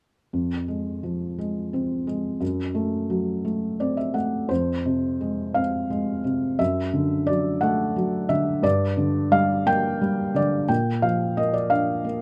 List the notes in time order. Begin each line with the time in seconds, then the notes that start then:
0.33 F2
0.68 G#3
1.03 F3
1.38 G#3
1.73 C4
2.07 G#3
2.40 F#2
2.75 A3
3.10 F#3
3.45 A3
3.80 C4 D5
3.97 E5
4.14 A3 F#5
4.49 F2 C5
4.86 C3
5.21 G#3
5.54 C4 F5
5.90 G#3
6.24 C3
6.59 F#2 E5
6.93 D3
7.27 F#3 D5
7.61 A3 F#5
7.96 F#3
8.29 D3 E5
8.63 G2 D5
8.97 D3
9.31 G3 F5
9.66 A#3 G5
10.01 G3
10.34 D3 D5
10.69 A#2 G5
11.02 F3 F5
11.37 A#3 D#5
11.53 D5
11.70 D4 F5
12.04 A#3